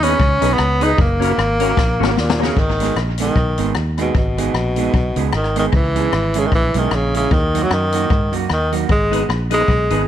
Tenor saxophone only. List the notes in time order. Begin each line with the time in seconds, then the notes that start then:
0.04 C#4
0.53 B3
0.83 D#4
1.01 A#3
2.19 A#2
2.43 C#3
2.60 D#3
3.21 D#3
4.01 B2
4.17 B2
5.36 D#3
5.59 D#3
5.76 E3
6.39 C#3
6.47 D#3
6.55 E3
6.78 D#3
6.95 C#3
7.16 C#3
7.33 D#3
7.63 F#3
7.73 D#3
8.52 D#3
8.91 G#3
9.54 G#3